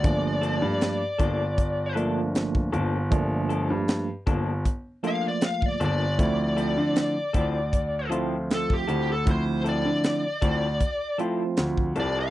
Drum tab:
HH |x-x-x-x-x-x-x-x-|x-x-x-x-x-x-x-x-|x-x-x-x-x-x-x-x-|x-x-x-x-x-x-x-x-|
SD |----o-------o---|----o-------o---|----o-------o---|----o-------o---|
BD |o-----o-o----o--|o-----o-o----o--|o-----o-o----o--|o-----o-o----o--|